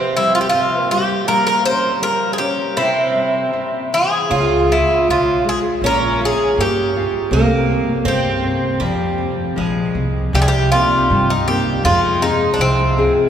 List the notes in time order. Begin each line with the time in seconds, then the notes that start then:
Already playing: C3 C4 G4
0.17 G3 E4
0.35 F4
0.41 G4
0.49 F4
0.54 C3
0.81 A#3
0.91 G3 G4
1.27 G3 A#3 A#4
1.47 A#4
1.65 C#4 C5
2.02 G3 A#4
2.33 G#4
2.38 C#4 G4
2.77 C3 C4 E4
3.15 G3
3.53 C3
3.93 E3 G#4
4.29 C#2 C#3 F4
4.69 G#3 E4
5.08 B1 C#3 F4
5.44 G#3
5.49 G#4
5.82 A#1 A#3 C#4
5.86 A#4
6.21 F4
6.25 G#4
6.58 G2 A#3 G4
6.96 F4
7.31 C2 A#3 C4
7.70 C4
8.05 G2 C4 G4
8.43 C4
8.80 F2 F3 G3
9.18 C4
9.56 A#1 F3 G#3
9.95 C2 C4
10.33 C2 C3 G3 G4
10.42 G#4
10.48 G4
10.72 A#3 C4 D#4 F4
11.10 G2 G3
11.30 D#4
11.48 A#3 C4 D#4 G4
11.83 F2 F3 G#3 F4
12.21 C4 D#4 F4 G#4
12.54 D4
12.59 C2 C3 C4
12.97 C4 F4 G#4